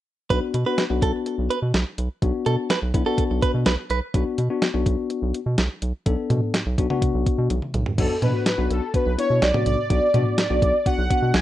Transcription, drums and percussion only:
0.30 kick, closed hi-hat
0.54 closed hi-hat
0.78 snare, closed hi-hat
1.02 kick, closed hi-hat
1.26 closed hi-hat
1.51 closed hi-hat
1.74 snare, closed hi-hat
1.98 closed hi-hat
2.22 kick, closed hi-hat
2.46 closed hi-hat
2.70 snare, closed hi-hat
2.94 kick, closed hi-hat
3.18 kick, closed hi-hat
3.42 kick, closed hi-hat
3.66 snare, closed hi-hat
3.90 closed hi-hat
4.14 kick, closed hi-hat
4.38 closed hi-hat
4.62 snare, closed hi-hat
4.86 kick, closed hi-hat
5.10 closed hi-hat
5.34 closed hi-hat
5.58 snare, closed hi-hat
5.82 closed hi-hat
6.06 kick, closed hi-hat
6.30 closed hi-hat, mid tom
6.54 snare, closed hi-hat
6.78 kick, closed hi-hat
6.90 mid tom
7.02 kick, closed hi-hat
7.26 kick, closed hi-hat
7.50 closed hi-hat, high tom
7.62 mid tom
7.74 closed hi-hat, mid tom
7.86 floor tom
7.98 kick, closed hi-hat, crash
8.22 closed hi-hat, mid tom
8.46 snare, closed hi-hat
8.71 closed hi-hat
8.94 kick, closed hi-hat
9.19 closed hi-hat
9.42 snare, closed hi-hat
9.54 mid tom
9.66 closed hi-hat
9.90 kick, closed hi-hat
10.14 closed hi-hat, mid tom
10.38 snare, closed hi-hat
10.62 kick, closed hi-hat
10.86 kick, closed hi-hat
11.10 kick, closed hi-hat
11.34 snare, closed hi-hat

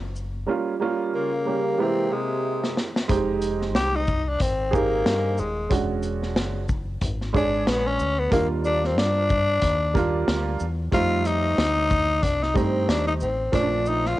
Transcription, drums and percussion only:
0.16 shaker
2.64 snare
2.77 snare
2.96 snare
3.09 kick, closed hi-hat
3.42 closed hi-hat, shaker
3.62 snare
3.75 snare, closed hi-hat
4.07 kick, shaker
4.40 kick, closed hi-hat
4.73 kick, shaker
5.06 snare, closed hi-hat
5.38 shaker
5.71 kick, closed hi-hat
6.03 closed hi-hat, shaker
6.23 snare
6.36 snare, closed hi-hat
6.69 kick, shaker
7.01 kick, closed hi-hat
7.21 snare
7.35 kick, closed hi-hat, shaker
7.67 snare, closed hi-hat
7.99 shaker
8.32 kick, closed hi-hat
8.64 shaker
8.84 snare
8.98 snare, closed hi-hat
9.30 kick, shaker
9.62 kick, closed hi-hat
9.95 kick, closed hi-hat, shaker
10.28 snare, closed hi-hat
10.60 shaker
10.92 kick, closed hi-hat
11.25 closed hi-hat, shaker
11.58 snare, closed hi-hat
11.90 kick, shaker
12.23 kick, closed hi-hat
12.43 snare
12.56 kick, closed hi-hat, shaker
12.89 snare, closed hi-hat
13.20 shaker
13.53 kick, closed hi-hat
13.86 shaker
14.05 snare

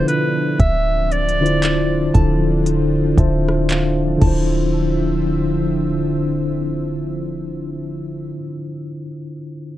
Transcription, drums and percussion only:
0.08 closed hi-hat
0.60 kick, closed hi-hat
1.12 closed hi-hat
1.29 closed hi-hat
1.46 closed hi-hat
1.63 clap, closed hi-hat
2.15 kick, closed hi-hat
2.66 closed hi-hat
3.18 kick, closed hi-hat
3.49 cross-stick
3.70 clap, closed hi-hat
4.22 kick, crash

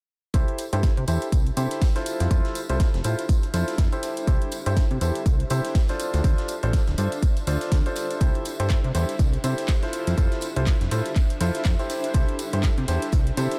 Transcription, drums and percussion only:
0.34 kick, closed hi-hat, tambourine
0.48 closed hi-hat
0.58 closed hi-hat, tambourine
0.73 closed hi-hat, tambourine
0.83 kick, snare, closed hi-hat, tambourine
0.97 closed hi-hat
1.08 closed hi-hat, tambourine
1.22 closed hi-hat, tambourine
1.32 kick, closed hi-hat, tambourine
1.47 closed hi-hat
1.57 closed hi-hat, tambourine
1.71 snare, closed hi-hat, tambourine
1.82 kick, snare, closed hi-hat, open hi-hat, tambourine
1.96 snare, closed hi-hat, tambourine
2.06 closed hi-hat, tambourine
2.19 snare, closed hi-hat, tambourine
2.31 kick, closed hi-hat, tambourine
2.45 snare, closed hi-hat
2.55 closed hi-hat, tambourine
2.69 closed hi-hat, tambourine
2.80 kick, snare, closed hi-hat, tambourine
2.94 snare, closed hi-hat
3.04 closed hi-hat, tambourine
3.19 closed hi-hat, tambourine
3.29 kick, closed hi-hat, tambourine
3.43 closed hi-hat
3.54 snare, closed hi-hat, tambourine
3.68 snare, closed hi-hat, tambourine
3.78 kick, snare, closed hi-hat, tambourine
3.92 closed hi-hat, tambourine
4.03 snare, closed hi-hat, tambourine
4.17 closed hi-hat, tambourine
4.27 kick, closed hi-hat, tambourine
4.42 closed hi-hat
4.52 closed hi-hat, tambourine
4.66 closed hi-hat, tambourine
4.77 kick, snare, closed hi-hat, tambourine
4.91 closed hi-hat
5.01 closed hi-hat, tambourine
5.15 closed hi-hat, tambourine
5.26 kick, closed hi-hat, tambourine
5.40 closed hi-hat
5.50 closed hi-hat, tambourine
5.65 snare, closed hi-hat, tambourine
5.75 kick, snare, closed hi-hat, open hi-hat, tambourine
5.88 snare, closed hi-hat, tambourine
6.00 closed hi-hat, tambourine
6.13 snare, closed hi-hat, tambourine
6.24 kick, closed hi-hat, tambourine
6.38 snare, closed hi-hat
6.48 closed hi-hat, tambourine
6.63 closed hi-hat, tambourine
6.73 kick, snare, closed hi-hat, tambourine
6.87 snare, closed hi-hat
6.98 closed hi-hat, tambourine
7.12 closed hi-hat, tambourine
7.22 kick, closed hi-hat, tambourine
7.37 closed hi-hat, tambourine
7.47 snare, closed hi-hat, tambourine
7.61 snare, closed hi-hat, tambourine
7.72 kick, snare, closed hi-hat, tambourine
7.86 closed hi-hat, tambourine
7.96 snare, closed hi-hat, tambourine
8.10 closed hi-hat, tambourine
8.20 kick, closed hi-hat, tambourine
8.35 closed hi-hat
8.45 closed hi-hat, tambourine
8.60 closed hi-hat
8.70 kick, snare, clap, closed hi-hat, tambourine
8.84 closed hi-hat
8.95 closed hi-hat, tambourine
9.09 closed hi-hat, tambourine
9.19 kick, closed hi-hat, tambourine
9.33 closed hi-hat
9.44 closed hi-hat, tambourine
9.58 snare, closed hi-hat, tambourine
9.68 kick, snare, clap, closed hi-hat, open hi-hat, tambourine
9.83 snare, closed hi-hat, tambourine
9.93 closed hi-hat, tambourine
10.07 snare, closed hi-hat, tambourine
10.18 kick, closed hi-hat, tambourine
10.32 snare, closed hi-hat
10.41 closed hi-hat, tambourine
10.56 closed hi-hat
10.67 kick, snare, clap, closed hi-hat, tambourine
10.81 snare, closed hi-hat
10.91 closed hi-hat, tambourine
11.06 closed hi-hat, tambourine
11.16 kick, clap, closed hi-hat, tambourine
11.30 closed hi-hat
11.40 snare, closed hi-hat, tambourine
11.55 snare, closed hi-hat, tambourine
11.65 kick, snare, clap, closed hi-hat, tambourine
11.79 closed hi-hat, tambourine
11.90 snare, closed hi-hat, tambourine
12.04 closed hi-hat, tambourine
12.14 kick, closed hi-hat, tambourine
12.29 closed hi-hat
12.39 closed hi-hat, tambourine
12.53 closed hi-hat, tambourine
12.63 kick, snare, clap, closed hi-hat, tambourine
12.78 closed hi-hat
12.88 closed hi-hat, tambourine
13.02 closed hi-hat, tambourine
13.12 kick, closed hi-hat, tambourine
13.27 closed hi-hat
13.37 closed hi-hat, tambourine
13.51 snare, closed hi-hat, tambourine

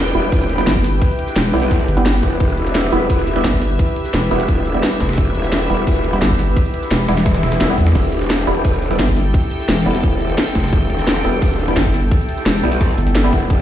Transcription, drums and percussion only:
0.06 snare
0.15 open hi-hat, ride, shaker
0.32 kick, closed hi-hat, open hi-hat, shaker
0.41 snare
0.50 closed hi-hat, ride, shaker
0.58 snare
0.67 snare, closed hi-hat, ride, shaker
0.76 kick
0.84 snare, open hi-hat, ride, shaker
1.02 kick, closed hi-hat, ride, shaker
1.10 shaker
1.19 closed hi-hat, ride
1.28 snare, shaker
1.36 snare, closed hi-hat, ride, shaker
1.45 snare
1.54 open hi-hat, ride, shaker
1.62 snare
1.71 kick, snare, closed hi-hat, ride, shaker
1.80 snare
1.88 closed hi-hat, ride, shaker
1.97 snare
2.06 snare, closed hi-hat, open hi-hat, shaker
2.14 snare
2.23 kick, snare, open hi-hat, ride, shaker
2.40 kick, closed hi-hat, ride, shaker
2.49 shaker
2.58 closed hi-hat, ride
2.66 snare, shaker
2.75 snare, closed hi-hat, ride, shaker
2.84 snare
2.92 open hi-hat, ride, shaker
3.10 kick, closed hi-hat, open hi-hat, shaker
3.18 snare
3.27 closed hi-hat, ride, shaker
3.36 snare
3.44 snare, closed hi-hat, ride, shaker
3.53 kick
3.62 snare, open hi-hat, ride, shaker
3.79 kick, closed hi-hat, ride, shaker
3.88 shaker
3.96 closed hi-hat, ride
4.05 snare, shaker
4.14 snare, closed hi-hat, ride, shaker
4.22 snare
4.31 open hi-hat, ride, shaker
4.40 snare
4.48 kick, closed hi-hat, ride, shaker
4.66 closed hi-hat, shaker
4.83 snare, closed hi-hat, ride, shaker
4.92 snare
5.00 kick, snare, open hi-hat, ride, shaker
5.09 snare, ride
5.13 snare, ride
5.18 kick, closed hi-hat, ride, shaker
5.26 shaker
5.35 closed hi-hat, ride
5.44 snare, shaker
5.52 snare, closed hi-hat, ride, shaker
5.61 snare
5.70 open hi-hat, ride, shaker
5.87 kick, closed hi-hat, open hi-hat, shaker
5.96 snare
6.04 closed hi-hat, ride, shaker
6.13 snare
6.22 snare, closed hi-hat, ride, shaker
6.30 kick
6.39 snare, open hi-hat, ride, shaker
6.56 kick, closed hi-hat, ride, shaker
6.65 shaker
6.74 closed hi-hat, ride
6.82 snare, shaker
6.91 snare, closed hi-hat, ride, shaker
7.00 snare
7.09 snare, open hi-hat, ride, shaker
7.17 snare, ride
7.26 kick, snare, closed hi-hat, ride, shaker
7.35 snare, ride
7.43 snare, closed hi-hat, ride, shaker
7.52 snare, ride
7.61 snare, closed hi-hat, ride, shaker
7.69 snare
7.78 kick, open hi-hat, ride, shaker
7.87 snare, ride
7.95 kick, closed hi-hat, ride, crash, shaker
8.04 shaker
8.13 closed hi-hat, ride
8.21 snare, shaker
8.30 snare, closed hi-hat, ride, shaker
8.39 snare
8.47 open hi-hat, ride, shaker
8.65 kick, closed hi-hat, open hi-hat, shaker
8.73 snare
8.82 closed hi-hat, ride, shaker
8.91 snare
8.99 snare, closed hi-hat, ride, shaker
9.08 kick
9.17 snare, open hi-hat, ride, shaker
9.34 kick, closed hi-hat, ride, shaker
9.43 shaker
9.51 closed hi-hat, ride
9.60 snare, shaker
9.69 snare, closed hi-hat, ride, shaker
9.77 snare
9.86 open hi-hat, ride, shaker
9.95 snare
10.03 kick, closed hi-hat, ride, shaker
10.21 closed hi-hat, shaker
10.38 snare, closed hi-hat, ride, shaker
10.47 snare
10.55 kick, snare, open hi-hat, ride, shaker
10.64 snare, ride
10.68 snare, ride
10.73 kick, closed hi-hat, ride, shaker
10.81 shaker
10.90 closed hi-hat, ride
10.99 snare, shaker
11.07 snare, closed hi-hat, ride, shaker
11.16 snare
11.25 open hi-hat, ride, shaker
11.42 kick, closed hi-hat, open hi-hat, shaker
11.51 snare
11.59 closed hi-hat, ride, shaker
11.68 snare
11.77 snare, closed hi-hat, ride, shaker
11.85 kick
11.94 snare, open hi-hat, ride, shaker
12.11 kick, closed hi-hat, ride, shaker
12.20 shaker
12.29 closed hi-hat, ride
12.37 snare, shaker
12.46 snare, closed hi-hat, ride, shaker
12.55 snare
12.63 open hi-hat, ride, shaker
12.72 snare
12.81 kick, snare, closed hi-hat, ride, shaker
12.89 snare
12.98 closed hi-hat, ride, shaker
13.07 snare
13.15 snare, closed hi-hat, open hi-hat, shaker
13.24 snare
13.33 kick, snare, open hi-hat, ride, shaker
13.50 kick, closed hi-hat, ride, shaker
13.59 shaker

